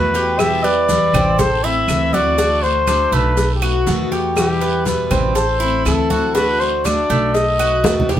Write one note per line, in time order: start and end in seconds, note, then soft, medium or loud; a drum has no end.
0.00 1.07 E2 medium
0.00 0.13 B2 medium
0.00 0.14 D#3 medium
0.00 0.14 A3 medium
0.00 0.14 B3 medium
0.00 0.13 F#4 medium
0.00 0.41 B4 loud
0.14 0.39 A3 soft
0.14 0.38 B3 soft
0.14 0.38 F#4 soft
0.14 0.63 G4 medium
0.14 cowbell medium
0.14 short guiro medium
0.14 maracas soft
0.39 0.63 B2 medium
0.39 0.63 E3 medium
0.39 0.63 G3 medium
0.39 0.63 B3 medium
0.39 0.63 E4 medium
0.39 0.65 E5 loud
0.39 cowbell loud
0.39 high conga soft
0.39 long guiro medium
0.39 claves medium
0.39 maracas medium
0.64 0.89 G3 soft
0.64 0.88 B3 soft
0.64 0.88 E4 medium
0.64 1.12 B4 medium
0.64 1.41 D5 loud
0.64 cowbell medium
0.64 high conga soft
0.64 maracas soft
0.89 1.38 B2 medium
0.89 1.38 E3 medium
0.89 1.38 G3 medium
0.89 1.39 B3 medium
0.89 1.39 E4 medium
0.89 cowbell medium
0.89 high conga medium
0.89 short guiro medium
0.89 maracas medium
1.13 1.84 A1 medium
1.13 1.38 C4 medium
1.13 cowbell medium
1.13 low conga medium
1.13 short guiro medium
1.13 claves medium
1.13 maracas soft
1.38 1.63 A4 medium
1.38 1.66 C5 loud
1.38 muted steel-string acoustic guitar stroke medium
1.38 cowbell loud
1.38 high conga soft
1.38 low conga medium
1.38 long guiro medium
1.38 maracas medium
1.63 1.88 A3 soft
1.63 1.88 C4 soft
1.63 2.12 E4 medium
1.63 1.88 E4 medium
1.63 2.15 E5 loud
1.63 high conga soft
1.63 maracas soft
1.88 3.06 D2 loud
1.88 2.12 E3 medium
1.88 2.13 A3 medium
1.88 2.13 C4 medium
1.88 2.13 E4 medium
1.88 cowbell medium
1.88 high conga soft
1.88 short guiro medium
1.88 claves medium
1.88 maracas medium
2.13 2.38 A3 soft
2.13 2.38 C4 soft
2.13 2.38 E4 medium
2.13 2.37 F#4 medium
2.13 2.65 D5 loud
2.13 high conga medium
2.13 short guiro medium
2.13 maracas soft
2.38 2.62 D3 medium
2.38 2.62 A3 medium
2.38 2.63 D4 medium
2.38 2.87 F#4 medium
2.38 2.62 F#4 medium
2.38 cowbell loud
2.38 high conga soft
2.38 long guiro medium
2.38 maracas medium
2.62 2.86 A3 soft
2.62 2.86 D4 soft
2.62 2.87 F#4 medium
2.62 3.15 C5 loud
2.62 high conga soft
2.62 maracas soft
2.87 3.36 D3 medium
2.87 3.36 A3 medium
2.87 3.36 D4 medium
2.87 3.12 D4 medium
2.87 3.36 F#4 medium
2.87 cowbell medium
2.87 high conga medium
2.87 short guiro medium
2.87 claves medium
2.87 maracas medium
3.12 3.83 B1 loud
3.12 3.61 A3 medium
3.12 3.55 B4 loud
3.12 high conga soft
3.12 short guiro medium
3.12 maracas soft
3.37 muted steel-string acoustic guitar stroke medium
3.37 cowbell loud
3.37 high conga soft
3.37 long guiro medium
3.37 maracas medium
3.55 3.65 G4 medium
3.62 3.86 A3 soft
3.62 3.86 B3 soft
3.62 4.10 F#4 medium
3.62 3.86 F#4 medium
3.62 4.11 F#4 loud
3.62 high conga soft
3.62 claves medium
3.62 maracas soft
3.86 5.05 E2 medium
3.86 4.11 B2 medium
3.86 4.11 D#3 medium
3.86 4.11 A3 medium
3.86 4.11 B3 medium
3.86 4.10 F#4 medium
3.86 cowbell medium
3.86 high conga medium
3.86 short guiro medium
3.86 maracas medium
4.12 4.36 A3 soft
4.12 4.36 B3 medium
4.12 4.36 F#4 medium
4.12 4.60 G4 medium
4.12 cowbell medium
4.12 short guiro medium
4.12 maracas soft
4.36 4.60 B2 medium
4.36 4.60 E3 medium
4.36 4.60 G3 medium
4.36 4.60 B3 medium
4.36 4.59 E4 medium
4.36 4.83 G4 loud
4.36 cowbell loud
4.36 high conga soft
4.36 long guiro medium
4.36 claves medium
4.36 maracas medium
4.60 4.85 G3 soft
4.60 4.85 B3 soft
4.60 4.85 E4 soft
4.60 5.10 B4 medium
4.60 cowbell medium
4.60 high conga soft
4.60 maracas soft
4.85 5.35 B2 medium
4.85 5.34 E3 medium
4.85 5.35 G3 medium
4.85 5.35 B3 medium
4.85 5.34 E4 medium
4.85 5.38 B4 medium
4.85 cowbell medium
4.85 high conga medium
4.85 short guiro medium
4.85 maracas medium
5.11 5.82 A1 loud
5.11 5.35 C4 medium
5.11 cowbell medium
5.11 low conga medium
5.11 short guiro medium
5.11 claves medium
5.11 maracas soft
5.35 5.60 A4 medium
5.35 5.86 C5 loud
5.35 muted steel-string acoustic guitar stroke medium
5.35 cowbell medium
5.35 high conga soft
5.35 long guiro medium
5.35 maracas medium
5.60 5.84 A3 soft
5.60 5.84 C4 medium
5.60 6.09 E4 medium
5.60 5.85 E4 medium
5.60 high conga soft
5.60 maracas soft
5.85 7.03 D2 medium
5.85 6.09 E3 medium
5.85 6.10 A3 medium
5.85 6.10 C4 medium
5.85 6.08 E4 medium
5.85 6.37 A4 medium
5.85 cowbell medium
5.85 high conga soft
5.85 short guiro medium
5.85 claves medium
5.85 maracas medium
6.10 6.34 A3 soft
6.10 6.34 C4 soft
6.10 6.34 E4 soft
6.10 6.34 F#4 medium
6.10 high conga loud
6.10 short guiro medium
6.10 maracas soft
6.34 6.59 D3 medium
6.34 6.59 A3 medium
6.34 6.59 D4 medium
6.34 6.83 F#4 medium
6.34 6.58 F#4 medium
6.34 6.62 B4 loud
6.34 cowbell loud
6.34 high conga soft
6.34 long guiro medium
6.34 maracas medium
6.59 6.83 A3 soft
6.59 6.84 D4 soft
6.59 6.83 F#4 soft
6.59 6.87 C5 medium
6.59 high conga soft
6.59 maracas soft
6.84 7.33 D3 medium
6.84 7.33 A3 medium
6.84 7.09 D4 medium
6.84 7.34 D4 medium
6.84 7.34 F#4 medium
6.84 7.36 D5 loud
6.84 cowbell medium
6.84 high conga medium
6.84 short guiro medium
6.84 claves medium
6.84 maracas medium
7.10 7.80 B1 loud
7.10 7.58 A3 medium
7.10 high conga soft
7.10 short guiro medium
7.10 maracas soft
7.34 8.09 D#5 loud
7.34 muted steel-string acoustic guitar stroke medium
7.34 cowbell loud
7.34 high conga soft
7.34 long guiro medium
7.34 maracas medium
7.58 7.83 A3 soft
7.58 7.83 B3 soft
7.58 7.83 F#4 medium
7.58 8.08 F#4 loud
7.58 high conga soft
7.58 claves medium
7.58 maracas soft
7.84 8.20 E2 medium
7.84 8.08 B2 medium
7.84 8.08 D#3 medium
7.84 8.08 A3 medium
7.84 8.08 B3 medium
7.84 8.08 F#4 medium
7.84 cowbell medium
7.84 high bongo medium
7.84 high conga medium
7.84 short guiro medium
7.84 maracas medium
8.00 low conga loud
8.09 8.20 A3 soft
8.09 8.20 B3 soft
8.09 8.20 F#4 soft
8.09 8.20 G4 medium
8.09 cowbell medium
8.09 low bongo medium
8.09 short guiro medium
8.09 maracas soft
8.17 low conga loud